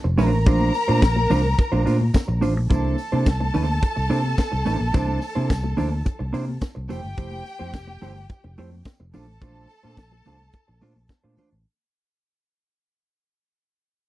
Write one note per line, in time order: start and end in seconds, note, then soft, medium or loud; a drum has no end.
0.04 0.16 F1 medium
0.04 muted clean electric guitar stroke soft
0.18 0.33 A#1 loud
0.18 0.38 A3 loud
0.18 0.32 D4 loud
0.18 0.32 F4 loud
0.18 2.39 A#4 loud
0.18 0.32 C5 loud
0.18 2.39 A#5 loud
0.18 open hi-hat medium
0.18 tambourine medium
0.18 high conga medium
0.18 low conga medium
0.33 0.47 A1 medium
0.33 muted clean electric guitar stroke medium
0.46 0.69 A#1 loud
0.46 0.72 A3 medium
0.46 0.72 D4 medium
0.46 0.73 F4 medium
0.46 0.73 C5 medium
0.46 kick loud
0.46 closed hi-hat medium
0.46 tambourine medium
0.46 low conga medium
0.60 muted conga soft
0.60 high conga medium
0.74 muted clean electric guitar stroke soft
0.74 open hi-hat medium
0.74 tambourine medium
0.88 1.00 A#2 loud
0.88 1.02 A3 medium
0.88 1.02 D4 medium
0.88 1.01 F4 medium
0.88 1.01 C5 medium
0.88 high conga medium
1.02 1.25 A#1 loud
1.02 kick loud
1.02 snare loud
1.02 closed hi-hat medium
1.02 tambourine medium
1.16 muted clean electric guitar stroke medium
1.16 muted conga soft
1.16 high conga medium
1.30 1.53 C2 medium
1.30 1.47 A3 medium
1.30 1.43 D4 medium
1.30 1.43 F4 medium
1.30 1.43 C5 loud
1.30 open hi-hat medium
1.30 tambourine medium
1.30 low conga medium
1.44 muted clean electric guitar stroke soft
1.58 muted clean electric guitar stroke soft
1.58 kick loud
1.58 closed hi-hat medium
1.72 1.84 A#1 loud
1.72 1.84 A3 medium
1.72 1.84 D4 medium
1.72 1.85 F4 medium
1.72 1.85 C5 medium
1.72 muted conga soft
1.85 2.09 A#2 loud
1.85 2.02 A3 medium
1.85 1.99 D4 loud
1.85 1.99 F4 loud
1.85 1.98 C5 loud
1.85 open hi-hat medium
1.85 tambourine soft
1.99 muted clean electric guitar stroke medium
1.99 high conga medium
2.14 muted clean electric guitar stroke soft
2.14 kick loud
2.14 snare loud
2.14 closed hi-hat medium
2.14 tambourine loud
2.28 2.43 A#1 loud
2.28 muted clean electric guitar stroke soft
2.28 muted conga soft
2.41 2.57 A1 medium
2.41 2.58 A3 medium
2.41 2.56 D4 medium
2.41 2.55 F4 medium
2.41 2.55 C5 loud
2.41 open hi-hat medium
2.41 tambourine medium
2.41 high conga medium
2.41 low conga medium
2.56 2.68 A#1 medium
2.56 muted clean electric guitar stroke medium
2.70 2.93 C2 loud
2.70 2.96 A#3 medium
2.70 2.96 D4 medium
2.70 2.96 E4 loud
2.70 6.58 A4 medium
2.70 2.96 C5 medium
2.70 6.58 A5 loud
2.70 kick loud
2.70 closed hi-hat medium
2.70 tambourine medium
2.70 muted conga soft
2.70 low conga medium
2.85 muted conga soft
2.85 high conga medium
2.98 open hi-hat medium
2.98 tambourine medium
3.12 3.24 C3 loud
3.12 3.26 A#3 medium
3.12 3.26 D4 medium
3.12 3.25 E4 medium
3.12 3.25 C5 medium
3.12 high conga medium
3.26 3.49 C2 medium
3.26 kick loud
3.26 snare loud
3.26 closed hi-hat medium
3.26 tambourine medium
3.26 muted conga soft
3.40 muted clean electric guitar stroke medium
3.40 muted conga soft
3.40 high conga medium
3.54 3.77 D2 medium
3.54 3.74 A#3 medium
3.54 3.68 D4 medium
3.54 3.67 E4 loud
3.54 3.67 C5 medium
3.54 open hi-hat medium
3.54 tambourine soft
3.54 low conga medium
3.68 muted clean electric guitar stroke soft
3.82 muted clean electric guitar stroke medium
3.82 kick loud
3.82 closed hi-hat medium
3.82 tambourine soft
3.96 4.08 C2 loud
3.96 muted clean electric guitar stroke soft
3.96 muted conga soft
4.10 4.33 C3 loud
4.10 4.26 A#3 loud
4.10 4.23 D4 loud
4.10 4.23 E4 loud
4.10 4.22 C5 loud
4.10 open hi-hat medium
4.10 tambourine soft
4.23 muted clean electric guitar stroke medium
4.23 high conga medium
4.37 muted clean electric guitar stroke soft
4.37 kick loud
4.37 snare loud
4.37 closed hi-hat medium
4.37 tambourine loud
4.52 4.64 C2 medium
4.52 muted clean electric guitar stroke soft
4.52 muted conga soft
4.65 4.78 A1 medium
4.65 4.86 A#3 medium
4.65 4.79 D4 medium
4.65 4.79 E4 loud
4.65 4.78 C5 medium
4.65 open hi-hat medium
4.65 tambourine medium
4.65 high conga medium
4.65 low conga medium
4.79 4.92 A#1 loud
4.79 muted clean electric guitar stroke medium
4.93 5.17 C2 loud
4.93 5.20 A#3 medium
4.93 5.20 D4 medium
4.93 5.20 E4 medium
4.93 5.20 C5 loud
4.93 kick loud
4.93 closed hi-hat medium
4.93 tambourine medium
4.93 low conga loud
5.08 muted conga soft
5.08 high conga medium
5.21 muted clean electric guitar stroke soft
5.21 open hi-hat medium
5.21 tambourine medium
5.35 5.48 C3 loud
5.35 5.49 A#3 medium
5.35 5.49 D4 medium
5.35 5.49 E4 medium
5.35 5.49 C5 medium
5.35 high conga medium
5.50 5.73 C2 medium
5.50 kick loud
5.50 snare loud
5.50 closed hi-hat medium
5.50 tambourine loud
5.50 muted conga soft
5.63 muted clean electric guitar stroke soft
5.63 high conga medium
5.77 6.01 D2 medium
5.77 5.94 A#3 medium
5.77 5.91 D4 medium
5.77 5.90 E4 loud
5.77 5.90 C5 loud
5.77 open hi-hat medium
5.77 tambourine medium
5.77 low conga medium
5.91 muted clean electric guitar stroke soft
6.05 muted clean electric guitar stroke medium
6.05 kick loud
6.05 closed hi-hat medium
6.05 tambourine soft
6.05 muted conga soft
6.19 6.31 C2 loud
6.19 muted clean electric guitar stroke medium
6.19 muted conga soft
6.33 6.57 C3 loud
6.33 6.50 A#3 loud
6.33 6.47 D4 loud
6.33 6.46 E4 loud
6.33 6.46 C5 loud
6.33 open hi-hat medium
6.33 tambourine soft
6.47 muted clean electric guitar stroke medium
6.47 high conga medium
6.61 muted clean electric guitar stroke soft
6.61 kick loud
6.61 snare loud
6.61 closed hi-hat medium
6.61 tambourine medium
6.61 muted conga soft
6.75 6.88 C2 medium
6.75 muted clean electric guitar stroke medium
6.75 muted conga soft
6.89 7.02 F1 loud
6.89 7.06 A3 loud
6.89 7.03 E4 medium
6.89 8.82 G4 loud
6.89 7.02 G4 medium
6.89 7.02 C5 loud
6.89 8.82 G5 loud
6.89 open hi-hat medium
6.89 tambourine medium
6.89 high conga medium
6.89 low conga medium
7.03 7.16 G1 loud
7.03 muted clean electric guitar stroke medium
7.17 7.40 F1 loud
7.17 7.43 A3 medium
7.17 7.44 E4 medium
7.17 7.44 G4 medium
7.17 7.44 C5 medium
7.17 kick loud
7.17 closed hi-hat medium
7.17 tambourine medium
7.17 muted conga soft
7.17 low conga loud
7.31 muted conga soft
7.31 high conga medium
7.46 muted clean electric guitar stroke medium
7.46 open hi-hat medium
7.46 tambourine medium
7.59 7.72 F2 loud
7.59 7.73 A3 medium
7.59 7.73 E4 medium
7.59 7.73 G4 medium
7.59 7.73 C5 medium
7.59 high conga medium
7.73 7.96 F1 medium
7.73 kick loud
7.73 snare loud
7.73 closed hi-hat medium
7.73 tambourine loud
7.73 muted conga soft
7.87 muted clean electric guitar stroke medium
7.87 muted conga soft
7.87 high conga medium
8.02 8.25 G1 medium
8.02 8.18 A3 medium
8.02 8.15 E4 medium
8.02 8.15 G4 medium
8.02 8.15 C5 loud
8.02 open hi-hat medium
8.02 tambourine soft
8.02 low conga medium
8.16 muted clean electric guitar stroke medium
8.29 muted clean electric guitar stroke soft
8.29 kick loud
8.29 closed hi-hat medium
8.29 tambourine soft
8.29 muted conga soft
8.44 8.56 F1 medium
8.44 muted clean electric guitar stroke soft
8.44 muted conga soft
8.58 8.81 F2 loud
8.58 8.74 A3 loud
8.58 8.72 E4 medium
8.58 8.71 G4 loud
8.58 8.71 C5 loud
8.58 open hi-hat medium
8.72 high conga medium
8.85 muted clean electric guitar stroke medium
8.85 kick loud
8.85 snare loud
8.85 closed hi-hat medium
8.85 tambourine loud
9.00 9.12 F1 loud
9.00 muted clean electric guitar stroke medium
9.00 muted conga soft
9.14 9.28 A#1 loud
9.14 9.30 A3 medium
9.14 9.28 D4 loud
9.14 9.28 F4 loud
9.14 11.34 A4 loud
9.14 9.27 C5 medium
9.14 11.34 A5 loud
9.14 open hi-hat medium
9.14 tambourine medium
9.14 high conga medium
9.14 low conga medium
9.28 9.39 A1 loud
9.28 muted clean electric guitar stroke soft
9.41 9.65 A#1 loud
9.41 9.67 A3 medium
9.41 9.68 D4 medium
9.41 9.68 F4 medium
9.41 9.68 C5 loud
9.41 kick loud
9.41 closed hi-hat medium
9.41 tambourine medium
9.41 muted conga soft
9.41 low conga loud
9.55 high conga medium
9.69 open hi-hat medium
9.69 tambourine medium
9.83 9.99 A#2 loud
9.83 9.97 A3 medium
9.83 9.97 D4 medium
9.83 9.97 F4 medium
9.83 9.96 C5 medium
9.83 high conga medium
9.97 10.20 A#1 loud
9.97 kick loud
9.97 snare loud
9.97 closed hi-hat medium
9.97 tambourine loud
10.12 muted clean electric guitar stroke medium
10.12 muted conga soft
10.12 high conga medium
10.25 10.49 C2 medium
10.25 10.42 A3 medium
10.25 10.39 D4 medium
10.25 10.39 F4 medium
10.25 10.39 C5 medium
10.25 open hi-hat medium
10.25 tambourine medium
10.25 low conga medium
10.40 muted clean electric guitar stroke soft
10.53 muted clean electric guitar stroke soft
10.53 kick loud
10.53 closed hi-hat medium
10.53 tambourine soft
10.53 muted conga soft
10.68 10.80 A#1 loud
10.68 muted clean electric guitar stroke medium
10.81 10.94 A#2 loud
10.81 10.98 A3 medium
10.81 10.95 D4 loud
10.81 10.95 F4 loud
10.81 10.95 C5 loud
10.81 open hi-hat medium
10.81 tambourine soft
10.96 11.07 A#1 medium
10.96 muted clean electric guitar stroke soft
10.96 high conga medium
11.09 muted clean electric guitar stroke soft
11.09 kick loud
11.09 snare loud
11.09 closed hi-hat medium
11.09 tambourine medium
11.09 muted conga soft
11.24 11.35 A#2 medium
11.24 11.36 A3 medium
11.24 11.37 D4 medium
11.24 11.37 F4 medium
11.24 11.37 C5 medium
11.37 11.54 A3 medium
11.37 11.51 D4 loud
11.37 11.51 F4 medium
11.37 11.50 C5 loud
11.37 open hi-hat medium
11.37 tambourine medium
11.37 high conga medium
11.37 low conga medium
11.51 11.63 A1 medium
11.51 muted clean electric guitar stroke soft